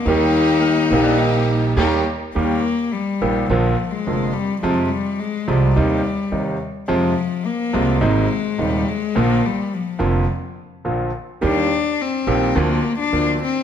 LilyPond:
<<
  \new Staff \with { instrumentName = "String section" } { \time 4/4 \key ees \major \tempo 4 = 106 <bes ees' g'>4. <bes ees' g'>4. <bes ees' g'>8 r8 | r1 | r1 | r1 |
r1 | r1 | }
  \new Staff \with { instrumentName = "Hollow-body jazz guitar" } { \time 4/4 \key ees \major r4 bes8. d'16 ees'4 bes'4 | r1 | r1 | r1 |
r1 | r1 | }
  \new Staff \with { instrumentName = "Cello" } { \clef bass \time 4/4 \key ees \major ees'2. r4 | bes4 g4 f8. aes8. g8 | f8 g8 aes8 g2 r8 | f4 bes4 aes4 g8 aes8 |
bes8 g8 f4 r2 | d'4 c'4 bes8. d'8. c'8 | }
  \new Staff \with { instrumentName = "Grand piano" } { \clef bass \time 4/4 \key ees \major <ees, ees g bes g'>4. <bes,, bes, ees g bes g'>4. <ees, ees g bes g'>8 r8 | <ees, ees g bes g'>8 r4 <bes,, bes, ees g bes g'>8 <bes,, bes, d f bes f'>8 r8 <f,, f, d f bes f'>8 r8 | <f, c f aes f'>8 r4 <c, c f aes f'>8 <ees, c ees g ees'>8 r8 <ees, c ees g ees'>8 r8 | <f, c f aes f'>8 r4 <c, c f aes f'>8 <aes,, aes, c ees aes ees'>8 r8 <ees,, ees, c ees aes ees'>8 r8 |
<bes,, bes, d f bes f'>8 r4 <f,, f, d f bes f'>8 r4 <bes,, bes, d f bes f'>8 r8 | <ees, ees g bes g'>8 r4 <bes,, bes, ees g bes g'>8 <d, d f bes f'>8 r8 <d, d f bes f'>8 r8 | }
  \new Staff \with { instrumentName = "Upright bass" } { \clef bass \time 4/4 \key ees \major ees,4. bes,,4. ees,8 r8 | ees,8 r4 bes,,8 bes,,8 r8 f,,8 r8 | f,8 r4 c,8 ees,8 r8 ees,8 r8 | f,8 r4 c,8 aes,,8 r8 ees,8 r8 |
bes,,8 r4 f,,8 r4 bes,,8 r8 | ees,8 r4 bes,,8 d,8 r8 d,8 r8 | }
>>